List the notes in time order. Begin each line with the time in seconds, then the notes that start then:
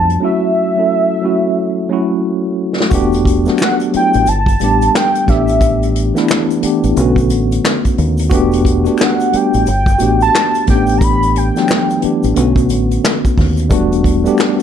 Already playing: F2 F#3 G3 A3 B3 D4 A5
0.10 closed hi-hat
0.20 F#3 A3 C#4 E4
0.24 F#4 E5
0.75 F#3 A3 C#4 E4
0.80 A4
1.22 F#3 A3 C#4 E4 F#4
1.89 F#3 A3 C#4 E4 F#4
2.80 snare
2.90 E1 A3 B3 D4 F#4, kick, closed hi-hat, shaker
2.94 G4
3.12 closed hi-hat, shaker
3.25 kick, closed hi-hat
3.45 F#3 A3 B3 D4, snare, closed hi-hat, shaker
3.49 F#4
3.58 finger snap, snare, shaker
3.63 F#5, clap
3.80 closed hi-hat, shaker
3.92 F#3 A3 B3 D4 E4, muted fingered electric bass stroke, closed hi-hat
3.97 G5
4.13 A1, closed hi-hat, shaker
4.26 G1 A5, closed hi-hat, shaker
4.46 kick, closed hi-hat, shaker
4.59 A1 G3 A3 B3 D4, closed hi-hat, shaker
4.64 G4
4.81 closed hi-hat, shaker
4.95 G5, finger snap, snare, clap, shaker
5.15 closed hi-hat, shaker
5.26 A1 E3 A3 B3 D4 E5, kick, closed hi-hat
5.30 G4, snare
5.48 closed hi-hat, shaker
5.61 kick, closed hi-hat, shaker
5.83 closed hi-hat, shaker
5.96 closed hi-hat
6.14 E3 A3 B3 D4 E4, snare, closed hi-hat, shaker
6.28 finger snap, snare, clap, shaker
6.50 closed hi-hat, shaker
6.61 E3 A3 B3 D4, muted fingered electric bass stroke, closed hi-hat
6.65 G4
6.83 A1, closed hi-hat, shaker
6.95 B1 C#3 A3 B3 C#4, closed hi-hat, shaker
7.00 D3 F#4
7.16 kick, closed hi-hat, shaker
7.30 A1, closed hi-hat, shaker
7.52 closed hi-hat, shaker
7.65 finger snap, snare, clap, shaker
7.85 kick, closed hi-hat, shaker
7.98 D#2, closed hi-hat
8.17 closed hi-hat, shaker
8.30 E1 A3 B3 D4 F#4, kick, closed hi-hat, shaker
8.34 G4
8.52 closed hi-hat, shaker
8.65 kick, closed hi-hat
8.84 A3 B3 D4 F#4 G4, closed hi-hat, shaker
8.98 finger snap, snare, shaker
9.02 F#5, clap
9.20 closed hi-hat, shaker
9.32 G3 A3 B3 D4 G4, muted fingered electric bass stroke, closed hi-hat
9.36 G5
9.54 A1, closed hi-hat, shaker
9.66 G1, closed hi-hat, shaker
9.86 kick, closed hi-hat, shaker
9.98 A1 A3 B3 D4 F#4, closed hi-hat, shaker
10.03 G4
10.21 A5, closed hi-hat, shaker
10.35 finger snap, snare, clap, shaker
10.54 closed hi-hat, shaker
10.66 A1 E3 A3 B3 C#4 G4 G5, kick, snare, closed hi-hat
10.75 D4
10.87 closed hi-hat, shaker
10.98 A#5, kick, closed hi-hat, shaker
11.04 B5
11.23 closed hi-hat, shaker
11.36 G5, closed hi-hat
11.54 E3 A3 B3 D4, snare, closed hi-hat, shaker
11.59 F#3
11.68 finger snap, snare, clap, shaker
11.90 closed hi-hat, shaker
12.01 E3 A3 B3 D4, muted fingered electric bass stroke, closed hi-hat
12.05 G4
12.23 A1, closed hi-hat, shaker
12.35 B1 D3 A3 B3 C#4, closed hi-hat, shaker
12.39 F#4
12.56 kick, closed hi-hat, shaker
12.69 A1, closed hi-hat, shaker
12.91 closed hi-hat, shaker
13.05 finger snap, snare, clap, shaker
13.25 kick, closed hi-hat, shaker
13.38 D#2, kick, snare, open hi-hat
13.57 closed hi-hat, shaker
13.69 E1 G3 A3 B3 D4 F#4, kick, closed hi-hat, shaker
13.92 closed hi-hat, shaker
14.04 kick, closed hi-hat
14.24 G3 A3 B3 D4 G4, closed hi-hat, shaker
14.38 finger snap, snare, clap, shaker
14.59 D5